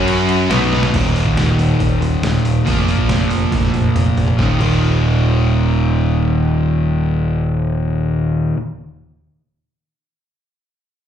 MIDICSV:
0, 0, Header, 1, 4, 480
1, 0, Start_track
1, 0, Key_signature, -6, "minor"
1, 0, Tempo, 432588
1, 1033, Time_signature, 4, 2, 24, 8
1, 12287, End_track
2, 0, Start_track
2, 0, Title_t, "Distorted electric guitar"
2, 0, Program_c, 0, 30
2, 0, Note_on_c, 0, 54, 85
2, 0, Note_on_c, 0, 61, 93
2, 0, Note_on_c, 0, 66, 92
2, 549, Note_off_c, 0, 54, 0
2, 552, Note_off_c, 0, 61, 0
2, 554, Note_off_c, 0, 66, 0
2, 555, Note_on_c, 0, 47, 92
2, 565, Note_on_c, 0, 54, 90
2, 572, Note_on_c, 0, 59, 104
2, 1025, Note_off_c, 0, 47, 0
2, 1030, Note_off_c, 0, 54, 0
2, 1030, Note_on_c, 0, 39, 75
2, 1034, Note_off_c, 0, 59, 0
2, 1054, Note_on_c, 0, 46, 89
2, 1074, Note_on_c, 0, 51, 94
2, 2924, Note_off_c, 0, 46, 0
2, 2931, Note_off_c, 0, 39, 0
2, 2937, Note_on_c, 0, 46, 81
2, 2953, Note_off_c, 0, 51, 0
2, 2958, Note_on_c, 0, 53, 78
2, 2975, Note_on_c, 0, 58, 81
2, 4849, Note_off_c, 0, 46, 0
2, 4854, Note_on_c, 0, 39, 82
2, 4860, Note_off_c, 0, 53, 0
2, 4868, Note_off_c, 0, 58, 0
2, 4876, Note_on_c, 0, 46, 85
2, 4897, Note_on_c, 0, 51, 83
2, 5088, Note_off_c, 0, 39, 0
2, 5093, Note_on_c, 0, 39, 84
2, 5114, Note_off_c, 0, 46, 0
2, 5119, Note_on_c, 0, 46, 89
2, 5133, Note_off_c, 0, 51, 0
2, 5137, Note_on_c, 0, 51, 87
2, 9484, Note_off_c, 0, 39, 0
2, 9510, Note_off_c, 0, 46, 0
2, 9529, Note_off_c, 0, 51, 0
2, 12287, End_track
3, 0, Start_track
3, 0, Title_t, "Picked electric bass"
3, 0, Program_c, 1, 34
3, 0, Note_on_c, 1, 42, 98
3, 512, Note_off_c, 1, 42, 0
3, 551, Note_on_c, 1, 35, 91
3, 997, Note_off_c, 1, 35, 0
3, 1042, Note_on_c, 1, 27, 85
3, 1366, Note_off_c, 1, 27, 0
3, 1513, Note_on_c, 1, 27, 81
3, 1676, Note_off_c, 1, 27, 0
3, 1760, Note_on_c, 1, 27, 77
3, 1920, Note_off_c, 1, 27, 0
3, 1997, Note_on_c, 1, 27, 82
3, 2158, Note_off_c, 1, 27, 0
3, 2224, Note_on_c, 1, 27, 85
3, 2389, Note_off_c, 1, 27, 0
3, 2467, Note_on_c, 1, 27, 80
3, 2631, Note_off_c, 1, 27, 0
3, 2707, Note_on_c, 1, 27, 77
3, 2871, Note_off_c, 1, 27, 0
3, 2953, Note_on_c, 1, 29, 87
3, 3279, Note_off_c, 1, 29, 0
3, 3417, Note_on_c, 1, 29, 81
3, 3584, Note_off_c, 1, 29, 0
3, 3655, Note_on_c, 1, 29, 75
3, 3823, Note_off_c, 1, 29, 0
3, 3905, Note_on_c, 1, 29, 78
3, 4070, Note_off_c, 1, 29, 0
3, 4141, Note_on_c, 1, 29, 80
3, 4308, Note_off_c, 1, 29, 0
3, 4385, Note_on_c, 1, 29, 76
3, 4550, Note_off_c, 1, 29, 0
3, 4627, Note_on_c, 1, 29, 67
3, 4792, Note_off_c, 1, 29, 0
3, 4866, Note_on_c, 1, 27, 73
3, 5002, Note_off_c, 1, 27, 0
3, 5107, Note_on_c, 1, 27, 80
3, 9454, Note_off_c, 1, 27, 0
3, 12287, End_track
4, 0, Start_track
4, 0, Title_t, "Drums"
4, 85, Note_on_c, 9, 49, 91
4, 196, Note_off_c, 9, 49, 0
4, 319, Note_on_c, 9, 49, 68
4, 430, Note_off_c, 9, 49, 0
4, 562, Note_on_c, 9, 49, 90
4, 563, Note_on_c, 9, 38, 120
4, 673, Note_off_c, 9, 49, 0
4, 674, Note_off_c, 9, 38, 0
4, 808, Note_on_c, 9, 38, 68
4, 919, Note_off_c, 9, 38, 0
4, 920, Note_on_c, 9, 38, 99
4, 1031, Note_off_c, 9, 38, 0
4, 1041, Note_on_c, 9, 36, 112
4, 1041, Note_on_c, 9, 46, 64
4, 1041, Note_on_c, 9, 57, 96
4, 1152, Note_off_c, 9, 36, 0
4, 1152, Note_off_c, 9, 46, 0
4, 1152, Note_off_c, 9, 57, 0
4, 1286, Note_on_c, 9, 46, 47
4, 1397, Note_off_c, 9, 46, 0
4, 1401, Note_on_c, 9, 36, 77
4, 1512, Note_off_c, 9, 36, 0
4, 1523, Note_on_c, 9, 46, 62
4, 1524, Note_on_c, 9, 38, 106
4, 1634, Note_off_c, 9, 46, 0
4, 1635, Note_off_c, 9, 38, 0
4, 1765, Note_on_c, 9, 46, 46
4, 1876, Note_off_c, 9, 46, 0
4, 1999, Note_on_c, 9, 36, 92
4, 2000, Note_on_c, 9, 46, 61
4, 2109, Note_off_c, 9, 36, 0
4, 2111, Note_off_c, 9, 46, 0
4, 2242, Note_on_c, 9, 46, 47
4, 2353, Note_off_c, 9, 46, 0
4, 2478, Note_on_c, 9, 46, 67
4, 2479, Note_on_c, 9, 38, 108
4, 2589, Note_off_c, 9, 46, 0
4, 2590, Note_off_c, 9, 38, 0
4, 2720, Note_on_c, 9, 46, 47
4, 2831, Note_off_c, 9, 46, 0
4, 2954, Note_on_c, 9, 36, 101
4, 2961, Note_on_c, 9, 46, 67
4, 3065, Note_off_c, 9, 36, 0
4, 3072, Note_off_c, 9, 46, 0
4, 3198, Note_on_c, 9, 46, 47
4, 3309, Note_off_c, 9, 46, 0
4, 3312, Note_on_c, 9, 36, 74
4, 3423, Note_off_c, 9, 36, 0
4, 3431, Note_on_c, 9, 46, 64
4, 3432, Note_on_c, 9, 38, 98
4, 3542, Note_off_c, 9, 46, 0
4, 3543, Note_off_c, 9, 38, 0
4, 3668, Note_on_c, 9, 46, 50
4, 3779, Note_off_c, 9, 46, 0
4, 3908, Note_on_c, 9, 36, 94
4, 3909, Note_on_c, 9, 46, 61
4, 3910, Note_on_c, 9, 38, 51
4, 4019, Note_off_c, 9, 36, 0
4, 4020, Note_off_c, 9, 46, 0
4, 4021, Note_off_c, 9, 38, 0
4, 4025, Note_on_c, 9, 38, 53
4, 4136, Note_off_c, 9, 38, 0
4, 4147, Note_on_c, 9, 46, 41
4, 4147, Note_on_c, 9, 48, 62
4, 4258, Note_off_c, 9, 46, 0
4, 4258, Note_off_c, 9, 48, 0
4, 4265, Note_on_c, 9, 48, 51
4, 4376, Note_off_c, 9, 48, 0
4, 4392, Note_on_c, 9, 46, 59
4, 4392, Note_on_c, 9, 47, 77
4, 4503, Note_off_c, 9, 46, 0
4, 4503, Note_off_c, 9, 47, 0
4, 4511, Note_on_c, 9, 45, 63
4, 4622, Note_off_c, 9, 45, 0
4, 4631, Note_on_c, 9, 43, 79
4, 4631, Note_on_c, 9, 46, 41
4, 4742, Note_off_c, 9, 43, 0
4, 4742, Note_off_c, 9, 46, 0
4, 4746, Note_on_c, 9, 43, 74
4, 4857, Note_off_c, 9, 43, 0
4, 4867, Note_on_c, 9, 36, 87
4, 4870, Note_on_c, 9, 38, 74
4, 4978, Note_off_c, 9, 36, 0
4, 4981, Note_off_c, 9, 38, 0
4, 5109, Note_on_c, 9, 36, 89
4, 5111, Note_on_c, 9, 57, 76
4, 5220, Note_off_c, 9, 36, 0
4, 5222, Note_off_c, 9, 57, 0
4, 12287, End_track
0, 0, End_of_file